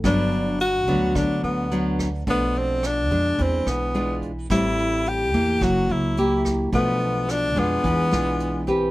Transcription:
<<
  \new Staff \with { instrumentName = "Tenor saxophone" } { \time 4/4 \key g \mixolydian \tempo 4 = 108 d'4 fis'4 d'8 b4 r8 | b8 c'8 d'4 c'8 b4 r8 | e'4 g'4 fis'8 e'4 r8 | b4 d'8 b2 r8 | }
  \new Staff \with { instrumentName = "Nylon-string guitar" } { \time 4/4 \key g \mixolydian << { <fis b d'>4 r8 <fis b d'>4. <fis b d'>8 r8 | <f a d'>4. <gis d'>4. <gis d' f'>8 r8 | <g c' e'>4. <bes e'>4. <ais e' g'>4 | <f a d'>4. <gis d' f'>4 <gis d' f'>4 <c' g' b'>8 | } \\ { g,2 d2 | b,2 e2 | a,2 fis2 | b,2 e2 | } >> }
  \new Staff \with { instrumentName = "Upright bass" } { \clef bass \time 4/4 \key g \mixolydian g,,4. d,8 d,8 d,4. | b,,4. f,8 e,8 b,,4. | a,,4. e,8 fis,,8 cis,4. | b,,4. f,8 e,8 b,,4. | }
  \new DrumStaff \with { instrumentName = "Drums" } \drummode { \time 4/4 <hh bd ss>8 hh8 hh8 <hh bd>8 <hh bd ss>8 hh8 hh8 <hh bd ss>8 | <hh bd>8 hh8 <hh ss>8 <hh bd>8 <hh bd>8 <hh ss>8 hh8 <hh bd>8 | <hh bd ss>8 hh8 hh8 <hh bd>8 <hh bd ss>8 hh8 hh8 <hh bd ss>8 | <hh bd>8 hh8 <hh ss>8 <hh bd>8 <hh bd>8 <hh ss>8 hh8 <hh bd>8 | }
>>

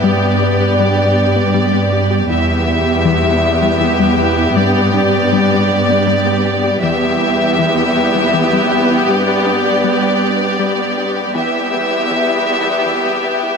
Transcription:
<<
  \new Staff \with { instrumentName = "Violin section" } { \time 6/8 \key e \minor \tempo 4. = 53 d''2. | e''2. | d''2. | e''2. |
d''2. | e''2. | }
  \new Staff \with { instrumentName = "Analog synth pad" } { \time 6/8 \key e \minor << { d''2. | e''2. | d''2. | e''2. |
d''2. | e''2. | } \\ { <g b g'>2. | <g b g'>2.~ | <g b g'>2. | <g b g'>2.~ |
<g b g'>2. | <g b g'>2. | } >> }
  \new Staff \with { instrumentName = "Violin section" } { \time 6/8 \key e \minor g'2. | g'2.~ | g'2. | g'2.~ |
g'2. | g'2. | }
  \new Staff \with { instrumentName = "Synth pluck" } { \time 6/8 \key e \minor g16 r16 d'16 r16 g16 g'16 r16 b16 g16 b16 g'16 g'16 | e16 r16 b16 r16 e16 e'16 r16 g16 e16 g16 e'16 e'16 | g16 r16 d'16 r16 g16 g'16 r16 b16 g16 b16 g'16 g'16 | e16 r16 b16 r16 e16 e'16 r16 g16 e16 g16 e'16 e'16 |
g16 r16 d'16 r16 g16 g'16 r16 b16 g16 b16 g'16 g'16 | e16 r16 b16 r16 e16 e'16 r16 g16 e16 g16 e'16 e'16 | }
  \new Staff \with { instrumentName = "Viola section" } { \time 6/8 \key e \minor b2. | b2.~ | b2. | b2.~ |
b2. | b2. | }
  \new Staff \with { instrumentName = "Cello section" } { \clef bass \time 6/8 \key e \minor g,2. | e,2. | g,2. | e,2. |
g,2. | e,2. | }
>>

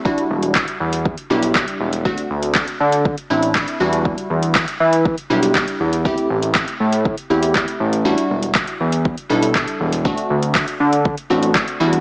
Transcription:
<<
  \new Staff \with { instrumentName = "Synth pluck" } { \time 4/4 \key e \minor \tempo 4 = 120 <g d' e' fis'>4. r4 <g d' e' g'>4 r8 | <a c' d' fis'>4. r4 <a c' d' e'>4 <g d' e' fis'>8~ | <g d' e' fis'>4 r4. <g d' e' g'>4 r8 | <a c' e' g'>4. r4 <a c' e' g'>4 r8 |
<g d' e' fis'>4. r4 <g d' e' a'>4 r8 | <a c' d' fis'>4. r4 <a c' d' fis'>4 <g d' e' fis'>8 | }
  \new Staff \with { instrumentName = "Analog synth bass" } { \clef bass \time 4/4 \key e \minor r8 e,,4 e,4 b,,4 e,,8~ | e,,8 d,4 d4 a,,4 e,8~ | e,8 e,4 e4 b,,4 e,8~ | e,8 a,,4 a,4 e,4 a,,8~ |
a,,8 e,,4 e,4 b,,4 e,,8~ | e,,8 d,4 d4 a,,4 e,8 | }
  \new DrumStaff \with { instrumentName = "Drums" } \drummode { \time 4/4 bd16 hh8 hh16 <hc bd>16 hh8 hh16 bd16 hh8 hh16 <hc bd>16 hh8 hh16 | bd16 hh8 hh16 <hc bd>16 hh8 hh16 bd16 hh8 hh16 <hc bd>16 hh8 hh16 | bd16 hh8 hh16 <hc bd>16 hh8 hh16 bd16 hh8 hh16 <hc bd>16 hh8 hh16 | bd16 hh8 hh16 <hc bd>16 hh8 hh16 bd16 hh8 hh16 <hc bd>16 hh8 hh16 |
r16 hh8 hh16 <hc bd>16 hh8 hh16 bd16 hh8 hh16 <hc bd>16 hh8 hh16 | bd16 hh8 hh16 <hc bd>16 hh8 hh16 bd16 hh8 hh16 <hc bd>16 hh8 hh16 | }
>>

